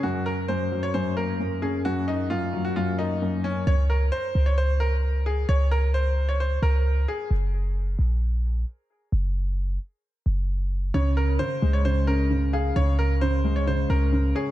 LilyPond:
<<
  \new Staff \with { instrumentName = "Grand piano" } { \time 4/4 \key ges \lydian \tempo 4 = 132 ges'8 bes'8 c''8. des''16 c''8 bes'4 aes'8 | ges'8 ees'8 f'8. ges'16 f'8 ees'4 des'8 | des''8 bes'8 c''8. des''16 c''8 bes'4 aes'8 | des''8 bes'8 c''8. des''16 c''8 bes'4 aes'8 |
r1 | r1 | des''8 bes'8 c''8. des''16 c''8 bes'4 aes'8 | des''8 bes'8 c''8. des''16 c''8 bes'4 aes'8 | }
  \new Staff \with { instrumentName = "Felt piano" } { \clef bass \time 4/4 \key ges \lydian ges,4 ges,8 ges8 ges,8 bes8 ges,8 des'8 | ges,4 ges,8 ges8 ges,8 bes8 ges,8 des'8 | r1 | r1 |
r1 | r1 | des4 des8 aes8 des8 des'8 des8 f''8 | des4 des8 aes8 des8 des'8 des8 des''8 | }
  \new Staff \with { instrumentName = "808-style bass" } { \clef bass \time 4/4 \key ges \lydian r1 | r1 | des,4 r8 des,2~ des,8 | des,2~ des,8 des,4 r8 |
ges,,4. bes,,4. r4 | ges,,4. r4 ges,,4. | des,4 r8 des,2~ des,8 | des,2~ des,8 des,4 r8 | }
>>